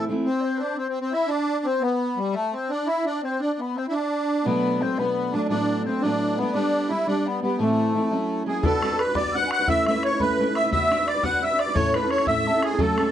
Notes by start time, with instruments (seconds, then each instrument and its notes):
0.09 steel-string acoustic guitar E3 A3 C4 E4
0.25 accordion C4, flute C5
0.41 flute C5 D5
0.57 accordion D4, flute B4
0.62 flute C5
0.77 accordion C4, flute C5
0.89 accordion C4
1.01 accordion C4, flute C5
1.12 accordion E4, flute E5
1.28 accordion D4, flute D5
1.65 accordion C4, flute C5
1.81 accordion B3, flute B5
2.17 accordion G3
2.33 accordion A3, flute A5
2.53 accordion C4, flute C5
2.70 accordion D4, flute D5
2.86 accordion E4
2.90 flute E5
3.05 accordion D4, flute D5
3.23 accordion C4, flute C5
3.40 accordion D4, flute D5
3.59 accordion B3, flute B5
3.75 accordion C4, flute C5
3.88 accordion D4 E4, flute E5
3.95 flute D5
4.44 steel-string acoustic guitar B2 F#3 A3 B3 D4, accordion B3, flute B5
4.80 steel-string acoustic guitar F#3 B3, accordion C4, flute C5
4.84 steel-string acoustic guitar A3 D4
4.96 steel-string acoustic guitar B2 F#3 A3 B3 D4, accordion B3, flute B5
5.32 steel-string acoustic guitar F#3 A3 B3 D4, accordion D4, flute D5
5.49 steel-string acoustic guitar A2 F#3 A3 B3 D4, accordion D4, flute D5
5.85 steel-string acoustic guitar F#3 A3 B3, accordion C4, flute C5
5.89 steel-string acoustic guitar D4
6.01 steel-string acoustic guitar A2 F#3 A3 B3 D4, accordion D4, flute D5
6.37 steel-string acoustic guitar F#3 B3, accordion B3, flute B5
6.41 steel-string acoustic guitar A3 D4
6.53 steel-string acoustic guitar G3 B3 D4 G4, accordion D4, flute D5
6.89 steel-string acoustic guitar G3 B3 D4, accordion E4
6.93 steel-string acoustic guitar G4
7.07 steel-string acoustic guitar G3 B3 D4 G4, accordion D4, flute D5
7.25 accordion B3, flute B5
7.42 steel-string acoustic guitar G3 B3 D4 G4, accordion B3, flute B5
7.58 steel-string acoustic guitar A2 E3 A3 C4 E4, accordion A3, flute A5
7.95 steel-string acoustic guitar E3 A3 C4 E4
8.11 steel-string acoustic guitar F#3 C#4 E4
8.46 steel-string acoustic guitar F#3 A#3 C#4 E4, oboe G#4, accordion G#4, flute G#5
8.63 steel-string acoustic guitar B3 D4 F#4 B4, oboe A4, accordion A4, flute A5, bodhran
8.82 steel-string acoustic guitar B3 D4 F#4 B4, bodhran
8.92 steel-string acoustic guitar D4 F#4 B4
8.99 accordion B4, oboe B4, flute B5, bodhran
9.07 steel-string acoustic guitar D4 F#4 B4
9.15 steel-string acoustic guitar B3 D4 F#4 B4, oboe D5, accordion D5, flute D6, bodhran
9.25 bodhran
9.31 steel-string acoustic guitar B3 D4, oboe F#5, accordion F#5, flute E6
9.36 steel-string acoustic guitar F#4 B4, flute F#6
9.42 steel-string acoustic guitar D4 F#4 B4
9.47 flute G#5, bodhran
9.51 oboe F#5, accordion F#5, flute F#6
9.59 steel-string acoustic guitar D4 F#4 B4
9.67 steel-string acoustic guitar A3 C#4 E4 B4, oboe E5, accordion E5, flute E6, bodhran
9.86 steel-string acoustic guitar A3 C#4 E4 B4, accordion E5, oboe E5, flute E6, bodhran
9.95 steel-string acoustic guitar C#4 E4 B4
10.03 oboe C#5, accordion C#5, flute C#6, bodhran
10.12 steel-string acoustic guitar C#4 E4 B4
10.20 steel-string acoustic guitar A3 C#4 E4 B4, accordion B4, oboe B4, flute B5, bodhran
10.29 bodhran
10.39 steel-string acoustic guitar A3 C#4 E4 B4
10.48 steel-string acoustic guitar C#4 E4 B4
10.55 oboe E5, accordion E5, flute E6, bodhran
10.63 steel-string acoustic guitar C#4 E4 B4
10.71 steel-string acoustic guitar B3 D4 F#4 B4, accordion E5, oboe E5, flute E6, bodhran
10.91 steel-string acoustic guitar B3 D4 F#4 B4, bodhran
10.99 steel-string acoustic guitar D4 F#4 B4
11.07 accordion D5, oboe D5, flute D6, bodhran
11.14 steel-string acoustic guitar D4 F#4 B4
11.23 steel-string acoustic guitar B3 D4 F#4 B4, oboe F#5, accordion F#5, flute F#6, bodhran
11.33 bodhran
11.42 steel-string acoustic guitar B3 D4 F#4 B4, oboe E5, accordion E5, flute E6
11.50 steel-string acoustic guitar D4 F#4 B4
11.59 accordion D5, oboe D5, flute D6, bodhran
11.66 steel-string acoustic guitar D4 F#4 B4
11.74 steel-string acoustic guitar A2 A3 C#4 E4 A4, accordion C#5, oboe C#5, flute C#6, bodhran
11.93 steel-string acoustic guitar A3 C#4 E4 A4, oboe B4, accordion B4, flute B5, bodhran
12.02 steel-string acoustic guitar C#4 E4 A4
12.10 oboe C#5, accordion C#5, flute C#6, bodhran
12.18 steel-string acoustic guitar C#4 E4 A4, bodhran
12.26 steel-string acoustic guitar A2 A3 C#4 E4 A4, oboe E5, accordion E5, flute E6, bodhran
12.37 bodhran
12.46 steel-string acoustic guitar A3 C#4 E4 A4, flute A5
12.54 steel-string acoustic guitar C#4 E4 A4
12.62 oboe G#4, accordion G#4, flute G#5, bodhran
12.71 steel-string acoustic guitar C#4 E4 A4
12.79 steel-string acoustic guitar F#3 A3 C#4 A4, oboe A4, accordion A4, flute A5, bodhran
12.98 steel-string acoustic guitar F#3 A3 C#4, flute A5, bodhran
13.02 steel-string acoustic guitar A4
13.06 steel-string acoustic guitar A4